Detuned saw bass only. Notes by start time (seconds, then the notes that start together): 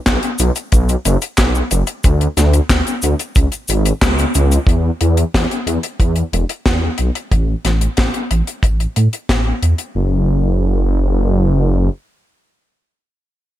0.07 B1
0.39 B1
0.73 B1
1.05 F#1
1.38 B1
1.71 F#1
2.04 D2
2.37 D2
2.70 D2
3.03 D2
3.36 C#2
3.69 G#1
4.02 C#2
4.35 C#2
4.67 E2
5.01 E2
5.34 E2
5.67 E2
6.00 E2
6.33 E1
6.66 E2
6.99 B1
7.32 A1
7.65 A1
7.98 A1
8.31 A1
8.63 A1
8.97 A2
9.29 A1
9.62 E2
9.95 F#1